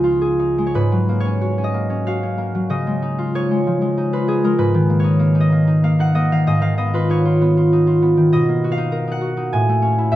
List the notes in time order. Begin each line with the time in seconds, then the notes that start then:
Already playing: C#2 C#3 F3 G#3 C#4 D#4 G#4 B4 C#5 D#5 F5
0.04 F4
0.21 G#4
0.39 D#4
0.58 G#3
0.67 C#5
0.75 G#2 B4
0.92 F#3
1.09 A#3
1.20 C#5
1.25 C#4
1.41 F#4
1.58 C#4
1.64 D#5
1.74 A#3
1.90 C#4
2.07 F#4 F5
2.23 C#4
2.38 A#3
2.55 F#3
2.70 C#3 D#5
2.87 G#3
3.02 D#4
3.19 F4
3.35 D#4 C#5
3.51 G#3
3.67 F3
3.81 G#3
3.97 D#4
4.13 F4 B4
4.28 D#4 G#4
4.44 G#3 A#4
4.58 G#2 B4
4.74 D#3
4.90 A#3
5.00 C#5
5.04 D#4
5.19 A#3
5.35 D#4
5.40 D#5
5.52 A#3
5.67 D#4
5.84 A#3 F5
5.99 D#4 F#5
6.15 A#3 D#5
6.32 D#3 F5
6.47 G#2 D#5
6.61 D#3 F5
6.78 B3 D#5
6.94 F4 B4
7.10 D#4 C#5
7.25 F4
7.42 B3
7.57 F4
7.73 D#4
7.87 F4
8.02 B3
8.17 D#3
8.33 B2 D#5
8.49 A#3
8.64 F#4
8.72 F5
8.78 D#4
8.92 A#4
9.07 D#4
9.12 F#5
9.21 F#4
9.37 D#4
9.53 A2 G#5
9.69 A3
9.82 C#4
9.98 E4
10.12 G2 E5